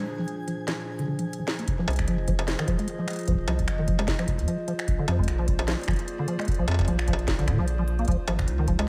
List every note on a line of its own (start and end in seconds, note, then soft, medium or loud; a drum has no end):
0.00 1.64 A#2 medium
0.00 1.64 F3 medium
0.00 1.65 D4 medium
0.00 1.64 G#4 medium
0.00 1.64 C5 medium
0.00 1.68 G#5 medium
0.19 0.26 F3 loud
0.28 closed hi-hat soft
0.48 0.57 F3 medium
0.48 closed hi-hat medium
0.68 0.73 F3 medium
0.68 snare loud
0.68 closed hi-hat medium
0.99 1.06 D3 loud
0.99 closed hi-hat soft
1.08 1.18 D3 medium
1.19 1.26 F3 medium
1.19 closed hi-hat medium
1.33 closed hi-hat medium
1.39 1.43 F3 loud
1.48 snare loud
1.59 1.66 A#3 medium
1.59 closed hi-hat soft
1.68 1.76 F1 loud
1.68 4.85 F3 medium
1.68 8.88 F4 medium
1.68 4.85 G#4 medium
1.68 8.88 C5 medium
1.68 4.85 D#5 medium
1.68 kick loud
1.68 closed hi-hat medium
1.79 1.86 F3 loud
1.88 2.09 C2 loud
1.88 closed hi-hat soft
1.88 struck metal medium
1.90 closed hi-hat soft
1.93 closed hi-hat medium
1.96 finger snap medium
1.96 closed hi-hat medium
1.99 kick loud
1.99 closed hi-hat medium
2.08 2.55 F1 medium
2.08 2.17 F3 loud
2.08 closed hi-hat medium
2.28 2.33 F3 medium
2.28 kick loud
2.28 closed hi-hat medium
2.39 closed hi-hat medium
2.39 struck metal medium
2.48 snare loud
2.48 closed hi-hat medium
2.59 2.66 D#3 loud
2.59 finger snap medium
2.59 closed hi-hat soft
2.68 2.76 D#1 medium
2.68 2.77 F3 loud
2.68 kick loud
2.68 closed hi-hat medium
2.79 2.87 G#3 medium
2.79 closed hi-hat medium
2.88 closed hi-hat medium
2.99 3.06 F3 loud
3.08 finger snap medium
3.08 closed hi-hat medium
3.10 closed hi-hat medium
3.13 closed hi-hat medium
3.16 closed hi-hat soft
3.19 closed hi-hat medium
3.21 closed hi-hat soft
3.23 closed hi-hat soft
3.25 closed hi-hat soft
3.28 3.37 F3 loud
3.28 kick loud
3.28 closed hi-hat medium
3.32 kick loud
3.35 kick medium
3.39 3.46 F1 medium
3.48 3.69 C2 loud
3.48 3.53 F3 medium
3.48 closed hi-hat medium
3.48 struck metal medium
3.59 kick loud
3.59 closed hi-hat medium
3.68 4.15 F1 medium
3.68 finger snap medium
3.68 closed hi-hat medium
3.79 3.86 D#3 loud
3.88 3.97 F3 loud
3.88 kick loud
3.88 closed hi-hat medium
3.99 4.07 G#3 medium
3.99 closed hi-hat medium
3.99 struck metal medium
4.08 kick loud
4.08 snare loud
4.08 closed hi-hat medium
4.19 4.26 F3 loud
4.19 finger snap medium
4.19 closed hi-hat soft
4.28 4.41 F1 medium
4.28 kick loud
4.28 closed hi-hat medium
4.39 4.46 F2 loud
4.39 closed hi-hat medium
4.48 4.57 F3 loud
4.48 closed hi-hat medium
4.68 4.73 F3 medium
4.68 closed hi-hat medium
4.79 finger snap medium
4.79 closed hi-hat medium
4.88 4.96 A#1 loud
4.88 8.05 A#3 medium
4.88 8.05 G#4 medium
4.88 8.05 D5 loud
4.88 kick loud
4.88 closed hi-hat medium
4.99 5.06 D3 loud
5.08 5.29 F2 loud
5.08 5.17 F3 loud
5.08 closed hi-hat medium
5.08 struck metal medium
5.19 5.27 G#3 medium
5.19 kick loud
5.23 closed hi-hat medium
5.28 5.75 A#1 medium
5.28 finger snap soft
5.28 closed hi-hat medium
5.39 5.46 F3 loud
5.48 kick loud
5.48 closed hi-hat medium
5.59 closed hi-hat medium
5.59 struck metal medium
5.68 5.77 F3 loud
5.68 snare loud
5.68 closed hi-hat medium
5.79 closed hi-hat soft
5.81 closed hi-hat soft
5.83 closed hi-hat medium
5.86 5.93 F3 medium
5.86 finger snap medium
5.86 closed hi-hat soft
5.88 5.96 G#1 medium
5.88 kick loud
5.88 closed hi-hat soft
5.91 closed hi-hat soft
5.93 closed hi-hat soft
5.96 closed hi-hat soft
5.99 closed hi-hat medium
6.08 closed hi-hat medium
6.19 6.26 D3 loud
6.28 6.37 F3 loud
6.28 closed hi-hat medium
6.39 6.47 G#3 medium
6.39 finger snap medium
6.39 closed hi-hat soft
6.41 closed hi-hat soft
6.45 closed hi-hat soft
6.48 kick loud
6.48 closed hi-hat medium
6.52 closed hi-hat soft
6.54 closed hi-hat soft
6.59 6.66 A#1 medium
6.59 6.66 F3 loud
6.68 6.89 F2 loud
6.68 closed hi-hat medium
6.68 struck metal medium
6.71 struck metal medium
6.74 struck metal medium
6.79 kick loud
6.79 closed hi-hat medium
6.79 struck metal soft
6.81 struck metal soft
6.85 7.35 A#1 medium
6.85 6.97 F3 loud
6.85 closed hi-hat medium
6.85 struck metal soft
6.99 finger snap medium
6.99 closed hi-hat soft
7.08 7.13 F3 medium
7.08 kick loud
7.08 closed hi-hat medium
7.13 struck metal medium
7.19 closed hi-hat medium
7.28 kick loud
7.28 snare loud
7.28 closed hi-hat medium
7.39 7.49 A#1 loud
7.39 7.46 D3 loud
7.39 closed hi-hat soft
7.48 7.60 A#2 medium
7.48 7.58 D3 medium
7.48 finger snap medium
7.48 kick loud
7.48 closed hi-hat medium
7.51 kick loud
7.53 kick medium
7.56 8.04 A#1 medium
7.56 7.66 F3 loud
7.56 kick medium
7.68 closed hi-hat medium
7.79 7.83 F3 loud
7.88 closed hi-hat medium
7.99 8.06 A#3 medium
7.99 closed hi-hat soft
8.05 closed hi-hat soft
8.08 8.16 C#2 loud
8.08 8.88 C#3 medium
8.08 8.17 F3 loud
8.08 8.88 C#4 medium
8.08 8.88 D#4 medium
8.08 kick loud
8.08 closed hi-hat medium
8.11 closed hi-hat soft
8.28 8.49 G#1 loud
8.28 8.37 F3 medium
8.28 closed hi-hat medium
8.28 struck metal loud
8.39 finger snap medium
8.39 kick loud
8.39 closed hi-hat medium
8.41 kick medium
8.45 8.88 C#2 medium
8.45 kick medium
8.45 closed hi-hat medium
8.59 8.66 D#3 loud
8.68 8.77 F3 loud
8.68 kick loud
8.68 closed hi-hat medium
8.79 8.87 G#3 medium
8.79 closed hi-hat soft
8.79 struck metal loud